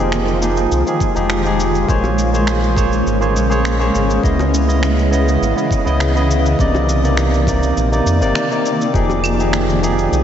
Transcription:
Already playing: analog synth bass F1, ambient pad D#3 G#3 F4, tine electric piano F3 D#4
0.00 tine electric piano G4 G#4
0.12 finger snap, shaker
0.28 shaker
0.41 tine electric piano F3 D#4 G4 G#4, shaker
0.57 shaker
0.71 analog synth bass C2, shaker
0.86 tine electric piano F3 D#4 G4 G#4, shaker
1.00 kick, shaker
1.15 analog synth bass F1, tine electric piano F3 D#4 G4 G#4, shaker
1.30 finger snap, shaker
1.44 tine electric piano F3 D#4 G4 G#4, shaker
1.60 shaker
1.75 shaker
1.88 analog synth bass A#1, ambient pad C#3 A#3 C#4, tine electric piano A#3 G#4 C5 C#5, kick, shaker
2.04 high bongo, shaker
2.19 shaker
2.33 tine electric piano A#3 G#4 C5 C#5, shaker
2.47 finger snap, shaker
2.64 shaker
2.76 tine electric piano A#3 G#4 C5 C#5, kick, shaker
2.93 shaker
3.06 analog synth bass G#1, shaker
3.20 tine electric piano A#3 G#4 C5 C#5, shaker
3.36 analog synth bass A#1, shaker
3.49 tine electric piano A#3 G#4 C5 C#5, shaker
3.65 finger snap, shaker
3.79 tine electric piano A#3 G#4 C5 C#5, shaker
3.95 analog synth bass G#1, shaker
4.10 shaker
4.22 analog synth bass C#2, tine electric piano C#3 B3 E4 D#5, ambient pad C#3 E3 B3 D#5, kick, shaker
4.39 high bongo, shaker
4.54 shaker
4.66 tine electric piano C#3 B3 E4 D#5, shaker
4.83 finger snap, shaker
4.99 shaker
5.11 tine electric piano C#3 B3 E4 D#5, shaker
5.28 shaker
5.42 analog synth bass G#1, shaker
5.55 tine electric piano C#3 B3 E4 D#5, shaker
5.71 kick, shaker
5.85 analog synth bass C#2, tine electric piano C#3 B3 E4 D#5, shaker
6.00 finger snap, shaker
6.15 tine electric piano C#3 B3 E4 D#5, shaker
6.31 shaker
6.46 shaker
6.59 analog synth bass C2, tine electric piano C3 A#3 D#4 D5, ambient pad C3 D#3 A#3 D5, kick, shaker
6.75 high bongo, shaker
6.89 shaker
7.03 tine electric piano C3 A#3 D#4 D5, shaker
7.17 finger snap, shaker
7.34 shaker
7.47 tine electric piano C3 A#3 D#4 D5, kick, shaker
7.63 shaker
7.77 analog synth bass A#1, shaker
7.92 tine electric piano C3 A#3 D#4 D5, shaker
8.06 analog synth bass F2, shaker
8.21 analog synth bass G1, tine electric piano C3 A#3 D#4 D5, shaker
8.35 finger snap, shaker
8.51 tine electric piano C3 A#3 D#4 D5, shaker
8.66 shaker
8.81 shaker
8.94 analog synth bass F1, tine electric piano F3 D#4 G4 G#4, ambient pad G#3 F4, kick, shaker
9.09 high bongo, shaker
9.24 claves, shaker
9.39 tine electric piano F3 D#4 G4 G#4, shaker
9.53 finger snap, shaker
9.70 shaker
9.82 tine electric piano F3 D#4 G4 G#4, shaker
9.99 shaker
10.12 analog synth bass C2, shaker

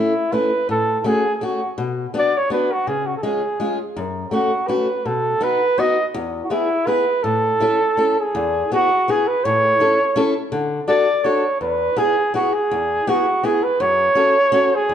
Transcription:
Already playing: steel-string acoustic guitar A3 C#4 E4, flugelhorn E4
0.32 steel-string acoustic guitar A3 C#4 E4, flugelhorn B4
0.69 steel-string acoustic guitar A2, flugelhorn A4
1.00 flugelhorn A4
1.04 steel-string acoustic guitar A3 C#4 F#4, flugelhorn G#4
1.36 flugelhorn G#4
1.41 steel-string acoustic guitar A3 C#4 F#4, flugelhorn F#4
1.78 steel-string acoustic guitar B2
2.14 steel-string acoustic guitar B3 D4 F#4
2.19 flugelhorn D5
2.37 flugelhorn C#5
2.50 steel-string acoustic guitar B3 D4 F#4, flugelhorn B4
2.72 flugelhorn F#4
2.87 steel-string acoustic guitar C#3, flugelhorn G#4
3.06 flugelhorn F#4
3.17 flugelhorn A4
3.22 steel-string acoustic guitar G#3 C#4 F4, flugelhorn G#4
3.60 steel-string acoustic guitar G#3 C#4 F4
3.96 steel-string acoustic guitar F#2
4.31 steel-string acoustic guitar A3 C#4 F#4, flugelhorn F#4
4.67 steel-string acoustic guitar A3 C#4 F#4, flugelhorn B4
5.05 steel-string acoustic guitar B2, flugelhorn A4
5.41 steel-string acoustic guitar B3 D#4 F#4, flugelhorn B4
5.78 steel-string acoustic guitar B3 D#4 F#4, flugelhorn D#5
6.14 steel-string acoustic guitar E2
6.43 flugelhorn F#4
6.50 steel-string acoustic guitar B3 E4 G#4, flugelhorn E4
6.87 steel-string acoustic guitar B3 E4 G#4, flugelhorn B4
7.23 steel-string acoustic guitar A2, flugelhorn A4
7.60 steel-string acoustic guitar C#4 E4 A4
7.97 steel-string acoustic guitar C#4 E4 A4
8.19 flugelhorn G#4
8.35 steel-string acoustic guitar E2
8.72 steel-string acoustic guitar B3 E4 G#4, flugelhorn F#4
9.08 steel-string acoustic guitar B3 E4 G#4, flugelhorn G#4
9.28 flugelhorn B4
9.44 steel-string acoustic guitar A2, flugelhorn C#5
9.80 steel-string acoustic guitar C#4 E4 A4
10.16 steel-string acoustic guitar C#4 E4 A4
10.52 steel-string acoustic guitar D3
10.88 steel-string acoustic guitar D4 F#4 A4, flugelhorn D5
11.24 steel-string acoustic guitar D4 F#4 A4, flugelhorn C#5
11.61 steel-string acoustic guitar E2, flugelhorn B4
11.96 steel-string acoustic guitar B3 E4 G#4, flugelhorn G#4
12.34 steel-string acoustic guitar B3 E4 G#4, flugelhorn F#4
12.53 flugelhorn G#4
12.71 steel-string acoustic guitar E2
13.07 steel-string acoustic guitar B3 E4 G#4, flugelhorn F#4
13.43 steel-string acoustic guitar B3 E4 G#4, flugelhorn G#4
13.63 flugelhorn B4
13.80 steel-string acoustic guitar F#2, flugelhorn C#5
14.15 steel-string acoustic guitar C#4 F#4 A4
14.52 steel-string acoustic guitar C#4 F#4 A4
14.75 flugelhorn G#4
14.89 steel-string acoustic guitar E2

